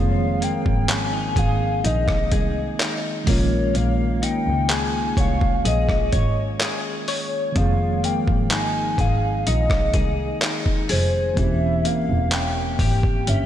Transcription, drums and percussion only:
0.42 closed hi-hat medium
0.66 kick medium
0.89 clap loud
0.89 closed hi-hat medium
1.36 kick loud
1.36 closed hi-hat medium
1.85 closed hi-hat medium
2.08 kick loud
2.08 cross-stick loud
2.32 kick medium
2.32 closed hi-hat medium
2.79 clap loud
2.79 closed hi-hat medium
3.27 kick loud
3.27 open hi-hat medium
3.75 closed hi-hat medium
4.23 closed hi-hat medium
4.70 clap loud
4.70 closed hi-hat medium
5.17 kick loud
5.17 closed hi-hat medium
5.41 kick medium
5.65 closed hi-hat medium
5.89 kick loud
5.89 cross-stick medium
6.12 kick medium
6.12 closed hi-hat medium
6.60 clap loud
6.60 closed hi-hat medium
7.08 open hi-hat medium
7.56 kick loud
7.56 closed hi-hat medium
8.04 closed hi-hat medium
8.28 kick medium
8.51 clap loud
8.51 closed hi-hat medium
8.98 kick loud
8.98 closed hi-hat medium
9.47 closed hi-hat medium
9.70 kick loud
9.70 cross-stick loud
9.94 kick loud
9.94 closed hi-hat medium
10.41 clap loud
10.41 closed hi-hat medium
10.66 kick medium
10.89 open hi-hat medium
11.37 kick loud
11.37 closed hi-hat medium
11.85 closed hi-hat medium
12.32 clap loud
12.32 closed hi-hat medium
12.79 kick loud
12.79 open hi-hat medium
13.03 kick medium
13.27 closed hi-hat medium

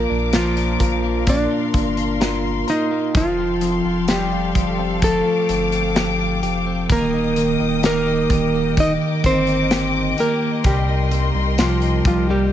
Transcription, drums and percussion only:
0.33 snare loud
0.33 closed hi-hat medium
0.57 closed hi-hat medium
0.80 kick medium
0.80 closed hi-hat medium
1.27 kick medium
1.27 closed hi-hat medium
1.74 kick medium
1.74 closed hi-hat medium
1.97 closed hi-hat soft
2.21 snare loud
2.21 closed hi-hat medium
2.68 closed hi-hat medium
3.15 kick loud
3.15 closed hi-hat medium
3.61 closed hi-hat medium
4.08 snare loud
4.08 closed hi-hat medium
4.55 kick medium
4.55 closed hi-hat medium
5.02 kick medium
5.02 closed hi-hat loud
5.49 closed hi-hat medium
5.72 closed hi-hat medium
5.96 snare loud
5.96 closed hi-hat medium
6.43 closed hi-hat medium
6.90 kick loud
6.90 closed hi-hat medium
7.36 closed hi-hat medium
7.83 snare loud
7.83 closed hi-hat medium
8.30 kick medium
8.30 closed hi-hat medium
8.77 kick medium
8.77 closed hi-hat medium
9.24 kick medium
9.24 closed hi-hat medium
9.47 closed hi-hat soft
9.71 snare loud
9.71 closed hi-hat medium
10.18 closed hi-hat medium
10.64 kick loud
10.64 closed hi-hat medium
11.11 closed hi-hat medium
11.58 snare loud
11.58 closed hi-hat medium
11.82 closed hi-hat soft
12.05 kick medium
12.05 closed hi-hat medium

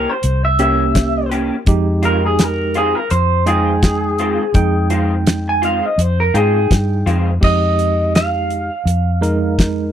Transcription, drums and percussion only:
0.23 closed hi-hat medium
0.59 closed hi-hat medium
0.95 kick medium
0.95 snare loud
0.95 closed hi-hat medium
1.32 closed hi-hat medium
1.66 kick loud
1.66 closed hi-hat medium
2.03 closed hi-hat medium
2.39 snare loud
2.39 closed hi-hat medium
2.74 closed hi-hat medium
3.10 closed hi-hat medium
3.47 closed hi-hat medium
3.83 kick medium
3.83 snare loud
3.83 closed hi-hat medium
4.18 closed hi-hat medium
4.54 kick loud
4.54 closed hi-hat medium
4.90 closed hi-hat medium
5.27 snare loud
5.27 closed hi-hat medium
5.63 closed hi-hat medium
5.99 closed hi-hat medium
6.35 closed hi-hat medium
6.71 kick medium
6.71 snare medium
6.71 closed hi-hat medium
7.07 closed hi-hat medium
7.42 kick loud
7.42 crash medium
7.79 closed hi-hat medium
8.15 snare loud
8.15 closed hi-hat medium
8.50 closed hi-hat medium
8.87 closed hi-hat medium
9.23 closed hi-hat medium
9.59 kick medium
9.59 snare medium
9.59 closed hi-hat medium

